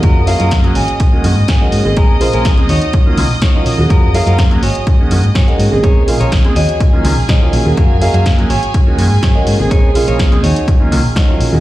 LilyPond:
<<
  \new Staff \with { instrumentName = "String section" } { \time 4/4 \key aes \mixolydian \tempo 4 = 124 <ees'' ees'''>1~ | <ees'' ees'''>1~ | <ees'' ees'''>1 | <aes' aes''>1~ |
<aes' aes''>1~ | <aes' aes''>1 | }
  \new Staff \with { instrumentName = "Clean electric guitar" } { \time 4/4 \key aes \mixolydian <f' ges' bes'>8 r16 <f' ges' bes'>16 r8 <des' ges' aes'>4 r8 <des' ges' aes'>8 r8 | <des' aes' bes'>8 r16 <des' aes' bes'>16 r8 <ees' ges' des''>4 r8 <ees' ges' des''>8 r8 | <f' ges' bes'>8 r16 <f' ges' bes'>16 r8 <ges' aes' des''>4 r8 <ges' aes' des''>8 r8 | <aes' bes' des''>8 r16 <aes' bes' des''>16 r8 <ges' des'' ees''>4 r8 <ges' des'' ees''>8 r8 |
<ges' bes' f''>8 r16 <ges' bes' f''>16 r8 <ges' aes' des''>4 r8 <ges' aes' des''>8 r8 | <aes' bes' des''>8 r16 <aes' bes' des''>16 r8 <ees' ges' des''>4 r8 <ees' ges' des''>8 r8 | }
  \new Staff \with { instrumentName = "Grand piano" } { \time 4/4 \key aes \mixolydian <ges aes bes des' ges'>8 <ges aes bes des' f''>8. <ges aes bes des' ges'>16 r8. <ees aes bes des' ges'>16 <ees aes bes des' ges'>16 r8 <ees aes bes des' ges'>8 <des aes bes c' aes'>16~ | <des aes bes c' aes'>8 <des aes bes f' c''>8. <des aes bes c' aes'>16 r8. <ees ges bes des' f'>16 <ees ges bes des' f'>16 r8 <ees ges bes des' f'>8 <ges aes bes des' ges'>16~ | <ges aes bes des' ges'>8 <ges aes bes des' f''>8. <ges aes bes des' ges'>16 r8. <ees aes bes des' ges'>16 <ees aes bes des' ges'>16 r8 <ees aes bes des' ges'>8 <des aes bes c' aes'>16~ | <des aes bes c' aes'>8 <des aes bes f'>8. <des aes bes c' aes'>16 r8. <ees ges bes des' f'>16 <ees ges bes des' f'>16 r8 <ees ges bes des' f'>8 <ges aes bes des' ges'>16~ |
<ges aes bes des' ges'>8 <ges aes bes des' f''>8. <ges aes bes des' ges'>16 r8. <ees aes bes des' ges'>16 <ees aes bes des' ges'>16 r8 <ees aes bes des' ges'>8 <des aes bes c' aes'>16~ | <des aes bes c' aes'>8 <des aes bes f'>8. <des aes bes c' aes'>16 r8. <ees ges bes des' f'>16 <ees ges bes des' f'>16 r8 <ees ges bes des' f'>8 <ges aes bes des' ges'>16 | }
  \new Staff \with { instrumentName = "Fingered electric bass" } { \clef bass \time 4/4 \key aes \mixolydian ges,8 r16 ges,8 r16 aes,,16 r8. ges,16 aes,16 r8 aes,16 aes,,16 | r8. bes,,8 r16 ees,16 r8. des,16 bes,,16 r8 bes,,16 ees,16 | r8. ges,8 r16 aes,,16 r8. ges,16 aes,16 r8 aes,16 aes,,16 | bes,,8 r16 bes,,8 r16 ees,16 r8. des,16 bes,,16 r8 bes,,16 ees,16 |
ges,8 r16 ges,8 r16 aes,,16 r8. ges,16 aes,16 r8 aes,16 aes,,16 | bes,,8 r16 bes,,8 r16 ees,16 r8. des,16 bes,,16 r8 bes,,16 ees,16 | }
  \new DrumStaff \with { instrumentName = "Drums" } \drummode { \time 4/4 <hh bd>8 hho16 hh16 <hh bd sn>16 hh16 hho16 hh16 <hh bd>8 hho8 <hh bd sn>8 hho8 | <hh bd>8 hho16 hh16 <hh bd sn>16 hh16 hho16 hh16 <hh bd>8 hho8 <hh bd sn>8 hho8 | <hh bd>8 hho16 hh16 <hh bd sn>16 hh16 hho16 hh16 <hh bd>8 hho16 hh16 <hh bd sn>16 hh16 hho8 | <hh bd>8 hho16 hh16 <hh bd sn>16 hh16 hho16 hh16 <hh bd>8 hho8 <hh bd sn>8 hho8 |
<hh bd>8 hho16 hh16 <hh bd sn>16 hh16 hho16 hh16 <hh bd>8 hho8 <hh bd sn>8 hho8 | <hh bd>8 hho16 hh16 <hh bd sn>16 hh16 hho16 hh16 <hh bd>8 hho8 <hh bd sn>8 hho8 | }
>>